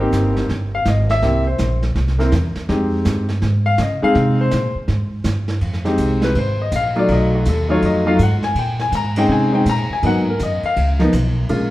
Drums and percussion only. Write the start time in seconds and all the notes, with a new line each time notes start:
0.12 snare, hi-hat pedal
0.36 snare
0.49 brush sweep, snare
0.85 snare, hi-hat pedal
1.09 snare
1.22 brush sweep, snare
1.58 snare, hi-hat pedal
1.82 snare
1.96 brush sweep, snare
2.08 snare
2.20 snare
2.32 snare, hi-hat pedal
2.55 snare
2.69 brush sweep, snare
3.05 snare, hi-hat pedal
3.29 snare
3.42 brush sweep, snare
3.78 snare, hi-hat pedal
4.15 brush sweep, snare
4.51 snare, hi-hat pedal
4.88 brush sweep, snare
5.24 snare, hi-hat pedal
5.48 snare
5.61 ride
5.73 snare
5.85 snare
5.97 hi-hat pedal, ride
6.22 snare
6.35 ride
6.72 hi-hat pedal, ride
6.95 ride
7.08 ride
7.45 hi-hat pedal, ride
7.82 ride
8.19 hi-hat pedal, ride
8.42 snare
8.55 ride
8.79 snare
8.92 hi-hat pedal, ride
9.16 ride
9.66 hi-hat pedal, ride
10.03 ride
10.39 hi-hat pedal, ride
10.63 ride
10.76 ride
11.00 snare
11.13 hi-hat pedal, ride
11.49 ride